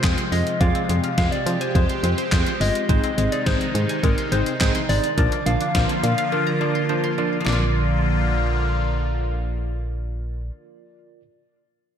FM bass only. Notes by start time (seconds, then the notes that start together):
0.04 F2
0.32 F2
0.61 F2
0.89 F2
1.18 F2
1.46 F3
1.75 F2
2.03 F2
2.32 F2
2.60 G1
2.89 G#1
3.18 G#1
3.46 G#1
3.75 G#2
4.03 G#1
4.32 G#1
4.61 G#1
4.89 G#1
5.18 A#1
5.46 A#1
5.75 A#1
6.03 A#2
7.46 A#1